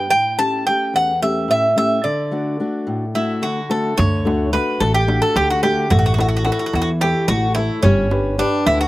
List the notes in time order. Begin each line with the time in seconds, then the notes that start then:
Already playing: G2
0.10 A2 G5
0.38 A3 C#4 G4 A5
0.67 A3 C#4 G4 G5
0.94 E2 F#5
1.22 A3 C#4 G4 E5
1.48 A2 E5
1.76 A3 C#4 G4 E5
2.04 D3 D5
2.31 A3 D4 F#4
2.60 A3 D4 F#4
2.87 A2
3.15 A3 D4 E4 F#4
3.42 D3 F#4
3.70 A3 D4 F#4 A4
3.98 D2 D3 C#5, darbuka dum
4.25 A3 D4 F#4, darbuka tek
4.53 A3 D4 F#4 B4, darbuka tek
4.80 A1 A3 A4, darbuka tek
4.94 G4
5.08 A3 D4 F#4, darbuka tek
5.22 A4, darbuka tek
5.36 D2 D3 G4, darbuka tek
5.50 F#4
5.63 A3 D4 F#4 G4, darbuka tek
5.90 A1 A3 F#4, darbuka dum
5.99 F#4
6.06 F#4
6.14 F#4
6.18 E4 F#4 A4 C#5, darbuka tek
6.28 F#4
6.37 F#4
6.45 E4 F#4 A4 C#5, darbuka tek
6.52 F#4
6.59 F#4
6.66 F#4
6.73 E2 E3 F#4, darbuka tek
6.82 F#4
7.01 E4 G4 A4 C#5, darbuka tek
7.15 darbuka tek
7.28 A1 A3 F#4, darbuka tek
7.55 E4 A4 C#5, darbuka tek
7.83 G1 G3 C#4, darbuka dum
8.11 D4 G4 B4, darbuka tek
8.38 D4 G4 B4
8.66 D2 D3 E4, darbuka tek
8.81 F#4